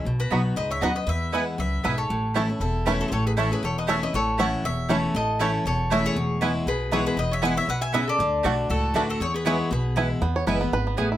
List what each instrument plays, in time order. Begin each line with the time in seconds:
0.05 upright bass B1, steel-string acoustic guitar B2
0.20 resonator guitar played with a steel bar F#4, mandolin B4
0.30 upright bass B1, steel-string acoustic guitar F#3 B3 D#4 F#4, mandolin B3 F#4 D#5 B5, five-string banjo B3 D#4 F#4
0.56 upright bass C#2, steel-string acoustic guitar G#2, resonator guitar played with a steel bar B4, mandolin D#5
0.71 resonator guitar played with a steel bar C#5, mandolin E5
0.81 upright bass D#2, steel-string acoustic guitar F#2, mandolin B3 F#4 D#5 F#5 B5, five-string banjo B3 D#4 F#4, resonator guitar played with a steel bar D#5
0.95 resonator guitar played with a steel bar B4, mandolin D#5
1.07 steel-string acoustic guitar E2, upright bass E2, resonator guitar played with a steel bar B4, mandolin E5
1.32 steel-string acoustic guitar E3 G#3 B3 E4, mandolin B3 E4 B4 F#5 G#5, five-string banjo B3 E4, resonator guitar played with a steel bar B4
1.58 upright bass C#2, steel-string acoustic guitar F#2, resonator guitar played with a steel bar B4, mandolin E5
1.83 upright bass B1, steel-string acoustic guitar G#2, mandolin B3 E4 B4 E5 G#5, five-string banjo B3 E4, resonator guitar played with a steel bar B4
1.97 resonator guitar played with a steel bar A4, mandolin C#5
2.10 upright bass A1, steel-string acoustic guitar A2
2.34 steel-string acoustic guitar E3 A3 C#4 E4, mandolin A3 E4 C#5 A5, five-string banjo A3 C#4 E4
2.49 steel-string acoustic guitar C#4 E4
2.60 upright bass E1, steel-string acoustic guitar E2, resonator guitar played with a steel bar E4, mandolin A4
2.86 steel-string acoustic guitar E3 A3 C#4 E4, mandolin A3 E4 B4 C#5 A5, five-string banjo A3 C#4 E4, resonator guitar played with a steel bar E4
3.01 resonator guitar played with a steel bar F#4, mandolin A4
3.08 upright bass A1, steel-string acoustic guitar A2, resonator guitar played with a steel bar G#4, mandolin C5
3.12 resonator guitar played with a steel bar A4, mandolin C#5
3.26 resonator guitar played with a steel bar G#4, mandolin B4
3.37 steel-string acoustic guitar E3 A3 C#4 E4, mandolin A3 E4 A4 C#5 A5, five-string banjo A3 C#4 E4, resonator guitar played with a steel bar E4
3.51 steel-string acoustic guitar C#4 E4, resonator guitar played with a steel bar G#4, mandolin B4
3.62 upright bass E1, steel-string acoustic guitar E2, resonator guitar played with a steel bar A4, mandolin C#5
3.78 resonator guitar played with a steel bar B4, mandolin D#5
3.87 steel-string acoustic guitar E3 A3 C#4 E4, mandolin A3 E4 C#5 E5 A5, five-string banjo A3 C#4 E4, resonator guitar played with a steel bar C#5
4.02 steel-string acoustic guitar C#4 E4, resonator guitar played with a steel bar B4, mandolin D#5
4.13 upright bass A1, steel-string acoustic guitar A2, resonator guitar played with a steel bar A4, mandolin C#5
4.38 steel-string acoustic guitar E3 A3 C#4 E4, mandolin A3 E4 C#5 F#5 A5, five-string banjo A3 C#4 E4, resonator guitar played with a steel bar C#5
4.64 upright bass E1, steel-string acoustic guitar E2, resonator guitar played with a steel bar C#5, mandolin E5
4.89 steel-string acoustic guitar E3 A3 C#4 E4, mandolin A3 E4 C#5 A5, five-string banjo A3 C#4 E4, resonator guitar played with a steel bar A4
5.14 upright bass A1, steel-string acoustic guitar A2, resonator guitar played with a steel bar A4, mandolin D#5
5.39 steel-string acoustic guitar E3 A3 C#4 E4, mandolin A3 E4 C#5 A5, five-string banjo A3 C#4 E4, resonator guitar played with a steel bar A4
5.65 upright bass E1, steel-string acoustic guitar E2, resonator guitar played with a steel bar A4, mandolin C#5
5.90 steel-string acoustic guitar E3 A3 C#4 E4, mandolin A3 E4 C#5 E5 A5, five-string banjo A3 C#4 E4, resonator guitar played with a steel bar C#5
6.06 resonator guitar played with a steel bar G#4, mandolin C#5
6.16 upright bass E1, steel-string acoustic guitar E2
6.41 steel-string acoustic guitar E3 G#3 B3 E4, mandolin B3 E4 B4 G#5, five-string banjo B3 E4
6.66 upright bass B1, steel-string acoustic guitar B2, resonator guitar played with a steel bar G#4, mandolin B4
6.91 steel-string acoustic guitar E3 G#3 B3 E4, mandolin B3 E4 B4 C#5 G#5, five-string banjo B3 E4, resonator guitar played with a steel bar G#4
7.07 resonator guitar played with a steel bar G#4, mandolin B4
7.16 upright bass E1, steel-string acoustic guitar E2, resonator guitar played with a steel bar B4, mandolin D#5
7.31 resonator guitar played with a steel bar C#5, mandolin E5
7.42 steel-string acoustic guitar E3 G#3 B3 E4, mandolin B3 E4 B4 F#5 G#5, five-string banjo B3 E4, resonator guitar played with a steel bar B4
7.56 steel-string acoustic guitar B3 E4, resonator guitar played with a steel bar C#5, mandolin E5
7.67 upright bass B1, steel-string acoustic guitar B2, resonator guitar played with a steel bar B4, mandolin F#5
7.81 resonator guitar played with a steel bar E5, mandolin G#5
7.93 steel-string acoustic guitar C#3, mandolin B3 E4 B4 E5 G#5, five-string banjo B3 E4, resonator guitar played with a steel bar B4
8.08 resonator guitar played with a steel bar A4, mandolin D5
8.19 upright bass D2, steel-string acoustic guitar D3
8.43 upright bass B1, steel-string acoustic guitar D3 A3 D4 F#4, mandolin A3 F#4 D5 A5, five-string banjo A3 D4 F#4
8.70 upright bass C#2, steel-string acoustic guitar A2, resonator guitar played with a steel bar F#4, mandolin A4
8.94 upright bass D2, steel-string acoustic guitar D3 A3 D4 F#4, mandolin A3 F#4 B4 D5 A5, five-string banjo A3 D4 F#4, resonator guitar played with a steel bar F#4
9.09 resonator guitar played with a steel bar F#4, mandolin A4
9.20 upright bass E2, steel-string acoustic guitar E2, resonator guitar played with a steel bar G#4, mandolin C#5
9.34 resonator guitar played with a steel bar G#4, mandolin B4
9.45 steel-string acoustic guitar E3 G#3 B3 E4, mandolin B3 E4 B4 C#5 G#5, five-string banjo B3 E4, resonator guitar played with a steel bar G#4
9.71 upright bass B1, steel-string acoustic guitar B2, resonator guitar played with a steel bar G#4, mandolin B4
9.96 steel-string acoustic guitar E3 G#3 B3 E4, mandolin B3 E4 B4 G#5, five-string banjo B3 E4
10.22 steel-string acoustic guitar E2, upright bass E2, five-string banjo B3
10.36 five-string banjo C#5
10.47 upright bass F#1, steel-string acoustic guitar E3 G#3 B3 E4, mandolin B3 E4 B4 G#5, five-string banjo B4
10.61 five-string banjo B3, steel-string acoustic guitar B3 E4
10.72 upright bass G#1, steel-string acoustic guitar G#2, five-string banjo B4
10.87 five-string banjo B3
10.97 upright bass A1, steel-string acoustic guitar A2, mandolin B3 E4 B4 G#5, five-string banjo G#4
11.12 five-string banjo E4